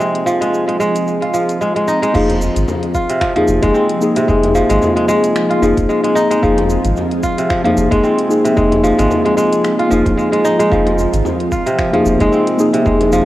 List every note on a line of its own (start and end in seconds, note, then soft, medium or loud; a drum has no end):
0.00 2.20 C3 medium
0.00 2.10 F3 medium
0.00 0.40 G#3 medium
0.00 2.11 A#3 medium
0.00 1.26 C4 medium
0.00 2.10 C4 medium
0.00 2.12 D#4 medium
0.00 0.17 F4 medium
0.00 2.10 F4 medium
0.00 2.10 G#4 medium
0.00 2.12 G#4 medium
0.00 shaker soft
0.15 closed hi-hat soft
0.26 1.33 F3 medium
0.26 shaker medium
0.41 0.67 G#3 medium
0.41 closed hi-hat soft
0.41 shaker soft
0.54 shaker soft
0.68 0.79 G#3 medium
0.68 closed hi-hat soft
0.80 1.60 G#3 medium
0.80 shaker medium
0.96 closed hi-hat soft
0.96 shaker soft
1.07 shaker soft
1.22 2.73 F4 medium
1.22 closed hi-hat soft
1.34 2.13 F3 medium
1.34 shaker medium
1.49 closed hi-hat soft
1.49 shaker soft
1.61 1.75 G#3 medium
1.61 shaker soft
1.76 2.01 G#3 medium
1.76 closed hi-hat soft
1.88 3.50 D#4 medium
1.88 shaker medium
2.02 2.19 G#3 medium
2.02 closed hi-hat soft
2.02 shaker soft
2.13 2.49 F1 medium
2.13 3.13 F3 medium
2.13 13.25 F3 medium
2.13 2.29 A#3 medium
2.13 13.25 C4 medium
2.13 2.30 D#4 medium
2.13 13.25 F4 medium
2.13 10.70 G#4 medium
2.13 2.30 G#4 loud
2.13 kick loud
2.13 crash loud
2.13 shaker soft
2.29 closed hi-hat soft
2.29 frame drum medium
2.42 shaker medium
2.56 2.65 G#1 medium
2.56 closed hi-hat medium
2.56 shaker soft
2.68 frame drum medium
2.68 shaker soft
2.83 closed hi-hat soft
2.95 4.46 F4 medium
2.95 kick medium
2.95 shaker medium
3.10 4.15 C3 medium
3.10 closed hi-hat medium
3.10 shaker soft
3.21 3.35 F3 medium
3.21 finger snap medium
3.21 kick loud
3.21 shaker soft
3.36 4.20 F3 medium
3.36 3.57 A#3 medium
3.36 3.58 D#4 medium
3.36 3.58 G#4 loud
3.36 closed hi-hat soft
3.36 frame drum medium
3.48 3.59 F1 medium
3.48 shaker medium
3.62 3.72 F1 loud
3.62 4.27 G#3 loud
3.62 3.84 A#3 medium
3.62 3.84 D#4 medium
3.62 3.85 G#4 loud
3.62 kick loud
3.62 closed hi-hat medium
3.62 shaker soft
3.74 5.54 C4 medium
3.74 shaker soft
3.89 closed hi-hat soft
4.01 4.24 A#3 loud
4.01 4.24 D#4 medium
4.01 4.24 G#4 medium
4.01 shaker medium
4.16 6.50 C3 medium
4.16 closed hi-hat medium
4.16 shaker soft
4.27 4.63 F1 medium
4.27 4.68 G#3 medium
4.27 5.59 A#3 loud
4.27 5.60 D#4 medium
4.27 5.61 G#4 loud
4.27 kick loud
4.27 shaker soft
4.43 closed hi-hat soft
4.43 frame drum medium
4.55 5.61 F3 medium
4.55 shaker medium
4.69 4.79 G#1 medium
4.69 4.95 G#3 loud
4.69 closed hi-hat medium
4.69 shaker soft
4.82 frame drum medium
4.82 shaker soft
4.96 5.07 G#3 medium
4.96 closed hi-hat soft
5.08 5.88 G#3 loud
5.08 shaker medium
5.24 closed hi-hat medium
5.24 shaker soft
5.36 finger snap medium
5.36 shaker soft
5.50 7.01 F4 medium
5.50 closed hi-hat soft
5.60 5.73 F1 medium
5.60 6.41 F3 medium
5.60 6.39 A#3 medium
5.60 6.40 D#4 medium
5.60 6.41 G#4 loud
5.60 shaker medium
5.77 5.86 F1 loud
5.77 kick loud
5.77 closed hi-hat medium
5.77 shaker soft
5.89 6.02 G#3 medium
5.89 shaker soft
6.04 6.29 G#3 medium
6.04 closed hi-hat soft
6.15 7.78 D#4 loud
6.15 shaker medium
6.30 7.90 G#3 medium
6.30 closed hi-hat medium
6.30 shaker soft
6.42 6.78 F1 medium
6.42 7.42 F3 medium
6.42 6.57 A#3 medium
6.42 6.58 D#4 medium
6.42 6.58 G#4 loud
6.42 kick loud
6.42 shaker soft
6.58 closed hi-hat soft
6.58 frame drum medium
6.70 shaker medium
6.85 6.93 G#1 medium
6.85 closed hi-hat medium
6.85 shaker soft
6.97 frame drum medium
6.97 shaker soft
7.11 closed hi-hat soft
7.23 8.75 F4 medium
7.23 kick medium
7.23 shaker medium
7.38 8.43 C3 medium
7.38 closed hi-hat medium
7.38 shaker soft
7.50 7.63 F3 medium
7.50 finger snap medium
7.50 kick loud
7.50 shaker soft
7.64 8.49 F3 loud
7.64 7.85 A#3 medium
7.64 7.86 D#4 medium
7.64 7.86 G#4 medium
7.64 closed hi-hat soft
7.64 frame drum medium
7.77 7.87 F1 medium
7.77 shaker medium
7.90 8.00 F1 loud
7.90 8.56 G#3 loud
7.90 8.12 A#3 loud
7.90 8.13 D#4 medium
7.90 8.13 G#4 loud
7.90 kick loud
7.90 closed hi-hat medium
7.90 shaker soft
8.03 9.83 C4 medium
8.03 shaker soft
8.18 closed hi-hat soft
8.29 8.52 A#3 medium
8.29 8.52 D#4 medium
8.29 8.53 G#4 loud
8.29 shaker medium
8.45 10.79 C3 medium
8.45 closed hi-hat medium
8.45 shaker soft
8.54 8.92 F1 medium
8.54 8.97 G#3 medium
8.54 9.87 A#3 loud
8.54 9.88 D#4 medium
8.54 kick loud
8.54 shaker soft
8.59 9.89 G#4 loud
8.72 closed hi-hat soft
8.72 frame drum medium
8.84 9.89 F3 loud
8.84 shaker medium
8.99 9.07 G#1 medium
8.99 9.24 G#3 loud
8.99 closed hi-hat medium
8.99 shaker soft
9.11 frame drum medium
9.11 shaker soft
9.25 9.36 G#3 medium
9.25 closed hi-hat soft
9.37 10.16 G#3 medium
9.37 shaker medium
9.53 closed hi-hat medium
9.53 shaker soft
9.65 finger snap medium
9.65 shaker soft
9.79 11.31 F4 medium
9.79 closed hi-hat soft
9.89 10.02 F1 medium
9.89 10.70 F3 medium
9.89 10.68 A#3 medium
9.89 10.69 D#4 medium
9.89 shaker medium
9.93 10.70 G#4 loud
10.06 10.15 F1 loud
10.06 kick loud
10.06 closed hi-hat medium
10.06 frame drum medium
10.06 shaker soft
10.17 10.31 G#3 medium
10.17 shaker soft
10.32 10.58 G#3 medium
10.32 closed hi-hat soft
10.45 12.07 D#4 loud
10.45 shaker medium
10.59 12.19 G#3 loud
10.59 closed hi-hat medium
10.59 shaker soft
10.70 11.06 F1 loud
10.70 11.70 F3 medium
10.70 10.86 A#3 medium
10.70 10.87 D#4 medium
10.70 10.87 G#4 loud
10.70 13.25 A#4 medium
10.70 kick loud
10.70 shaker soft
10.86 closed hi-hat soft
10.86 frame drum medium
10.99 shaker medium
11.13 11.22 G#1 medium
11.13 closed hi-hat medium
11.13 shaker soft
11.25 frame drum medium
11.25 shaker soft
11.40 closed hi-hat soft
11.52 13.03 F4 medium
11.52 kick medium
11.52 shaker medium
11.66 12.72 C3 medium
11.66 closed hi-hat medium
11.66 shaker soft
11.79 11.92 F3 medium
11.79 finger snap medium
11.79 kick loud
11.79 shaker soft
11.92 12.78 F3 medium
11.92 12.14 A#3 medium
11.92 12.14 D#4 medium
11.92 12.15 G#4 medium
11.92 closed hi-hat soft
11.92 frame drum medium
12.05 12.16 F1 medium
12.05 shaker medium
12.19 12.29 F1 loud
12.19 12.84 G#3 loud
12.19 12.41 A#3 loud
12.19 12.41 D#4 medium
12.19 12.42 G#4 loud
12.19 kick loud
12.19 closed hi-hat soft
12.19 shaker soft
12.32 13.25 C4 medium
12.32 shaker soft
12.47 closed hi-hat soft
12.58 12.81 A#3 medium
12.58 12.81 D#4 medium
12.58 12.82 G#4 loud
12.58 shaker medium
12.73 13.25 C3 medium
12.73 closed hi-hat medium
12.73 shaker soft
12.83 13.20 F1 loud
12.83 13.25 G#3 medium
12.83 13.25 A#3 loud
12.83 13.25 D#4 medium
12.83 kick loud
12.83 shaker soft
12.87 13.25 G#4 loud
13.01 closed hi-hat soft
13.01 frame drum medium
13.13 13.25 F3 medium
13.13 shaker medium